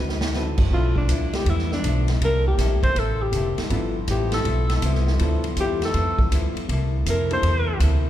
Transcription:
Already playing: upright bass D2, hollow-body jazz guitar D3 C4 F#4
0.00 hollow-body jazz guitar B4
0.09 snare
0.21 snare
0.34 hollow-body jazz guitar D3 C4 F#4 B4, grand piano C4 E4 F#4 A4, snare
0.57 upright bass F#1, kick, crash
0.71 upright bass B1, hollow-body jazz guitar G2 F3 B3, grand piano F3 B3 D4 E4 A4, trombone section A3 B3, alto saxophone F4, kick
0.75 hollow-body jazz guitar E4
0.96 alto saxophone D4, kick
1.08 upright bass D2, hollow-body jazz guitar G2 F3 B3 E4, kick, hi-hat pedal, ride
1.33 alto saxophone G4, snare, ride
1.46 upright bass E2, hollow-body jazz guitar G2 F3 B3, kick, ride
1.50 alto saxophone E4, hollow-body jazz guitar E4
1.59 snare
1.72 alto saxophone D4, snare
1.83 upright bass B1, hollow-body jazz guitar G2 F3 B3, kick, hi-hat pedal, ride
1.87 hollow-body jazz guitar E4
2.08 snare, ride
2.21 upright bass C2, hollow-body jazz guitar C3 A#3 E4, trombone section D3 A#3 E4 A4, grand piano G3 A#3 D4 E4 A4, kick, ride
2.25 hollow-body jazz guitar A4, alto saxophone A#4
2.48 alto saxophone G4
2.58 upright bass A#1, hollow-body jazz guitar C3 A#3 E4 A4, kick, snare, hi-hat pedal, ride
2.82 alto saxophone C5, muted upright bass stroke, kick, ride
2.95 upright bass A1, hollow-body jazz guitar C3 A#3 E4, kick, ride
2.99 alto saxophone A4, hollow-body jazz guitar A4
3.23 alto saxophone G4
3.32 upright bass F1, hollow-body jazz guitar C3 A#3 E4 A4, kick, hi-hat pedal, ride
3.58 muted upright bass stroke, snare, ride
3.70 upright bass G1, hollow-body jazz guitar G2 F3 B3, grand piano F3 B3 D4 E4 A4, trombone section B3 E4 F4, kick, ride
3.74 hollow-body jazz guitar E4
4.07 upright bass A1, hollow-body jazz guitar G2 F3 B3 E4, alto saxophone G4, kick, hi-hat pedal, ride
4.32 alto saxophone A4, snare, ride
4.45 upright bass B1, hollow-body jazz guitar G2 F3 B3, kick, ride
4.49 hollow-body jazz guitar E4
4.70 snare, ride
4.82 upright bass C2, hollow-body jazz guitar G2 F3 B3 E4, kick, hi-hat pedal, ride
4.95 snare
5.07 snare
5.19 upright bass D2, hollow-body jazz guitar G2 F3 B3, grand piano F3 B3 D4 E4 A4, kick, ride
5.24 hollow-body jazz guitar E4
5.44 ride
5.57 upright bass E2, hollow-body jazz guitar G2 F3 B3 E4, kick, hi-hat pedal, ride
5.61 alto saxophone G4
5.82 alto saxophone A4, snare, ride
5.94 upright bass F2, hollow-body jazz guitar G2 F3 B3, kick, ride
5.98 hollow-body jazz guitar E4
6.18 muted upright bass stroke, kick
6.31 upright bass D2, hollow-body jazz guitar G2 F3 B3 E4, kick, hi-hat pedal, ride
6.56 muted upright bass stroke, ride
6.67 upright bass C2, hollow-body jazz guitar C3, trombone section D3 A3 A#3 E4, kick, ride
6.71 hollow-body jazz guitar A#3 E4 A4
7.06 upright bass F2, hollow-body jazz guitar C3 A#3 E4 A4, kick, hi-hat pedal, ride
7.10 alto saxophone A#4
7.31 grand piano G3 A#3 D4 E4 A4, alto saxophone C5, ride
7.42 upright bass E2, hollow-body jazz guitar C3 A#3 E4, kick, ride
7.47 hollow-body jazz guitar A4
7.80 upright bass D2, hollow-body jazz guitar C3 A#3 E4 A4, kick, hi-hat pedal, ride

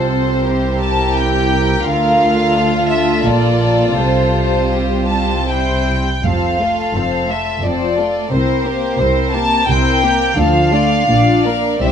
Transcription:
Already playing: double bass section C2, cello section C3, viola section C4 F4, violin section A4 C5
0.50 viola section E4, violin section G4 A#4
0.81 violin section A5
1.16 violin section G5
1.85 double bass section D2, cello section D3, viola section A3 F4, violin section F4 F5
2.57 violin section A4
2.89 violin section E5
3.24 double bass section A#1, cello section A#2, viola section A#3, violin section D5
3.98 double bass section C2, cello section C3, viola section G3 C4, violin section C5
4.73 violin section G4
5.08 violin section A5
5.48 violin section E4 C5 G5
6.23 double bass section F1, cello section F2, viola section F3 C4, violin section A4 C5 F5
6.60 viola section A3, violin section F4 A4
6.95 double bass section F1, cello section F2, viola section F3 C4, violin section A4 C5
7.29 viola section A3, violin section F4 A4 E5
7.63 double bass section F1, cello section F2, viola section F3 C4, violin section A4 C5 D5
7.97 viola section A3, violin section F4 A4
8.31 double bass section C2, cello section C3, viola section C4 E4, violin section A#4 C5
8.64 viola section A#3 C4, violin section G4 A#4
8.99 double bass section C2, cello section C3, viola section C4 E4, violin section A#4 C5
9.32 viola section A#3 C4, violin section G4 A#4 A5
9.67 double bass section C2, cello section C3, viola section C4 E4, violin section A#4 C5 G5
10.02 viola section A#3 C4, violin section G4 A#4
10.36 double bass section D2, cello section D3, viola section F3 F4, violin section D4 A4 F5
10.72 viola section A3 D4, violin section F4 D5
11.08 double bass section A#1, cello section A#2, viola section D4 F4, violin section D5
11.44 viola section A#3 D4, violin section A#4 D5 F5
11.81 double bass section C2, cello section C3, viola section E3 C4, violin section G4 C5 E5

